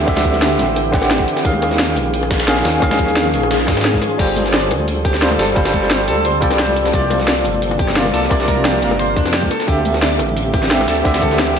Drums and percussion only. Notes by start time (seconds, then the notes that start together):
0.08 kick, snare, closed hi-hat
0.16 snare, closed hi-hat, high bongo, high conga
0.25 kick, closed hi-hat, shaker
0.33 snare, closed hi-hat, high conga, shaker
0.42 snare, closed hi-hat, high bongo
0.51 shaker
0.59 snare, closed hi-hat, high conga, shaker
0.68 shaker
0.76 closed hi-hat, high bongo
0.93 kick, snare, closed hi-hat, shaker
1.02 snare, high bongo
1.11 snare, closed hi-hat
1.20 kick
1.28 closed hi-hat, shaker
1.36 snare, high bongo
1.45 kick, closed hi-hat
1.54 high conga
1.62 closed hi-hat, high bongo, shaker
1.71 snare, high conga, shaker
1.79 snare, closed hi-hat
1.88 shaker
1.95 closed hi-hat, high bongo, high conga, shaker
2.06 shaker
2.14 closed hi-hat
2.23 high bongo
2.31 kick, snare, closed hi-hat, shaker
2.40 snare, closed hi-hat
2.48 snare, closed hi-hat
2.57 closed hi-hat, high bongo
2.65 snare, closed hi-hat, shaker
2.82 kick, closed hi-hat, high bongo
2.91 snare, closed hi-hat, high conga
2.99 kick, closed hi-hat, shaker
3.08 closed hi-hat, high conga, shaker
3.16 snare, closed hi-hat, high bongo
3.25 shaker
3.34 closed hi-hat, high conga, shaker
3.43 high bongo, shaker
3.51 snare, closed hi-hat
3.68 kick, snare, closed hi-hat, shaker
3.77 snare, closed hi-hat, high bongo
3.81 snare, closed hi-hat
3.85 snare, closed hi-hat
3.94 kick, snare, closed hi-hat
4.02 closed hi-hat, high bongo, shaker
4.19 kick, closed hi-hat, crash
4.36 closed hi-hat, high conga, shaker
4.44 snare, high bongo, shaker
4.54 snare, closed hi-hat
4.63 shaker
4.71 closed hi-hat, high bongo, shaker
4.80 high conga, shaker
4.88 closed hi-hat
5.05 kick, closed hi-hat, high bongo, shaker
5.14 snare
5.22 snare, closed hi-hat
5.31 closed hi-hat, high bongo, high conga
5.39 snare, closed hi-hat, shaker
5.56 kick, snare, closed hi-hat
5.65 snare, closed hi-hat, high bongo
5.73 kick, closed hi-hat, high conga, shaker
5.82 snare, closed hi-hat, shaker
5.91 snare, closed hi-hat, high bongo
6.00 shaker
6.08 snare, closed hi-hat, shaker
6.16 high conga, shaker
6.25 closed hi-hat, high bongo
6.42 kick, closed hi-hat, shaker
6.50 snare, high bongo
6.59 snare, closed hi-hat
6.68 high conga
6.76 closed hi-hat, shaker
6.85 snare, high bongo
6.93 kick, closed hi-hat
7.10 closed hi-hat, high bongo, high conga, shaker
7.20 snare, shaker
7.28 snare, closed hi-hat
7.37 shaker
7.45 closed hi-hat, high bongo, shaker
7.54 high conga, shaker
7.62 closed hi-hat
7.71 high bongo
7.79 kick, closed hi-hat, shaker
7.88 snare
7.96 snare, closed hi-hat
8.05 closed hi-hat, high bongo, high conga
8.14 snare, closed hi-hat, open hi-hat, shaker
8.23 snare
8.31 kick, closed hi-hat, high bongo
8.40 snare
8.48 kick, closed hi-hat, high conga, shaker
8.57 shaker
8.65 snare, closed hi-hat, high bongo
8.74 shaker
8.82 snare, closed hi-hat, shaker
8.91 high bongo, high conga, shaker
8.99 closed hi-hat
9.16 kick, closed hi-hat, shaker
9.26 snare, high bongo
9.34 snare, closed hi-hat
9.43 kick, high conga
9.51 closed hi-hat, high bongo, shaker
9.60 snare
9.68 kick, closed hi-hat
9.85 closed hi-hat, high conga, shaker
9.94 snare, high bongo, shaker
10.02 snare, closed hi-hat
10.11 shaker
10.19 closed hi-hat, high bongo, shaker
10.29 high conga, shaker
10.37 closed hi-hat
10.54 kick, closed hi-hat, high bongo, shaker
10.63 snare
10.71 snare, closed hi-hat
10.80 closed hi-hat, high bongo, high conga
10.88 snare, closed hi-hat, shaker
11.05 kick, snare, closed hi-hat
11.14 snare, closed hi-hat, high bongo
11.22 kick, closed hi-hat, high conga, shaker
11.31 snare, closed hi-hat, shaker
11.39 snare, closed hi-hat, high bongo
11.48 shaker